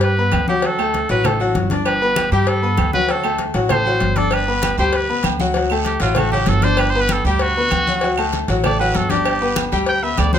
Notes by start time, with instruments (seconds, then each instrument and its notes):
Already playing: upright bass G2, grand piano G3 G4 G5
0.01 trumpet B4, cowbell, high conga
0.17 grand piano B3 B4 B5, high conga
0.32 upright bass D2, cowbell, high conga, low timbale, low agogo, claves
0.48 grand piano F#3 F#4 F#5, trumpet G4, high conga
0.62 grand piano F#3 F#4 F#5, trumpet A4, cowbell, high conga, low agogo
0.79 grand piano A3 A4 A5, high conga, low agogo, claves
0.94 cowbell, high conga
1.09 upright bass A1, grand piano F#3 F#4 F#5, trumpet B4, cowbell
1.24 grand piano A3 A4 A5, trumpet A4, cowbell, high conga, low conga, low agogo, claves
1.40 grand piano F#3 F#4 F#5, high conga, low agogo
1.55 upright bass G1, cowbell, high conga
1.70 grand piano D4 D5 D6, cowbell, high conga
1.85 trumpet B4, cowbell, high conga, low agogo, claves
2.02 grand piano B3 B4 B5, high conga
2.16 cowbell, high conga, low agogo, claves
2.32 upright bass G2, grand piano G3 G4 G5, trumpet G4, high conga, low agogo
2.47 trumpet A4, cowbell, high conga
2.62 grand piano B3 B4 B5, high conga
2.77 upright bass D2, cowbell, high conga, low agogo, claves
2.93 grand piano F#3 F#4 F#5, trumpet B4, high conga
3.09 grand piano F#3 F#4 F#5, trumpet A4, cowbell, high conga, low agogo
3.24 grand piano A3 A4 A5, high conga, low agogo, claves
3.38 cowbell, high conga
3.54 upright bass A1, grand piano F#3 F#4 F#5, cowbell
3.69 grand piano A3 A4 A5, trumpet C5, cowbell, high conga, low conga, low agogo, claves
3.85 grand piano F#3 F#4 F#5, high conga, low agogo
4.00 upright bass G1, cowbell, high conga
4.16 grand piano D4 D5 D6, trumpet A4, cowbell, high conga
4.31 trumpet B4, cowbell, high conga, low agogo, long guiro, claves
4.48 grand piano B3 B4 B5, high conga
4.62 cowbell, high conga, low agogo, short guiro, claves
4.78 upright bass D2, grand piano G3 G4 G5, trumpet C5, high conga, low agogo, short guiro
4.93 trumpet B4, cowbell, high conga, long guiro
5.09 grand piano B3 B4 B5, high conga
5.23 upright bass D2, cowbell, high conga, low agogo, short guiro, claves
5.40 grand piano F#3 F#4 F#5, high conga, short guiro
5.54 grand piano F#3 F#4 F#5, cowbell, high conga, low agogo, long guiro
5.70 grand piano A3 A4 A5, high conga, low agogo, claves
5.85 trumpet G4, cowbell, high conga, short guiro
6.00 upright bass A1, grand piano F#3 F#4 F#5, trumpet F4, cowbell, short guiro
6.15 grand piano A3 A4 A5, trumpet F#4, cowbell, high conga, low conga, low agogo, long guiro, claves
6.32 grand piano F#3 F#4 F#5, trumpet G4, high conga, low conga, low agogo
6.46 upright bass G1, trumpet A4, cowbell, high conga, short guiro
6.62 grand piano D4 D5 D6, trumpet C5, cowbell, high conga, short guiro
6.77 trumpet B4, cowbell, high conga, low agogo, long guiro, claves
6.90 trumpet C5, high conga
6.95 grand piano B3 B4 B5
7.00 trumpet B4
7.08 trumpet A4, cowbell, high conga, low agogo, short guiro, claves
7.25 upright bass D2, grand piano G3 G4 G5, trumpet G4, high conga, low agogo, short guiro
7.39 trumpet F#4, cowbell, high conga, long guiro
7.56 grand piano B3 B4 B5, high conga
7.71 upright bass D2, cowbell, high conga, low agogo, short guiro, claves
7.87 grand piano F#3 F#4 F#5, high conga, short guiro
8.01 grand piano F#3 F#4 F#5, cowbell, high conga, low agogo, long guiro
8.17 grand piano A3 A4 A5, high conga, low agogo, claves
8.33 cowbell, high conga, short guiro
8.48 upright bass A1, grand piano F#3 F#4 F#5, cowbell, short guiro
8.64 grand piano A3 A4 A5, trumpet D5, cowbell, high conga, low conga, low agogo, long guiro, claves
8.79 grand piano F#3 F#4 F#5, trumpet B4, high conga, low agogo
8.94 upright bass G1, trumpet A4, cowbell, high conga, short guiro
9.10 grand piano D4 D5 D6, trumpet G4, cowbell, high conga, short guiro
9.25 cowbell, high conga, low agogo, long guiro, claves
9.40 grand piano B3 B4 B5, high conga
9.56 cowbell, high conga, low agogo, short guiro, claves
9.72 upright bass D2, grand piano G3 G4 G5, high conga, low agogo, short guiro
9.86 trumpet G5, cowbell, high conga, long guiro
10.03 grand piano B3 B4 B5, trumpet E5, high conga
10.17 upright bass D2, trumpet D5, cowbell, high conga, low timbale, low agogo, short guiro, claves
10.33 grand piano F#3 F#4 F#5, trumpet C5, high conga, short guiro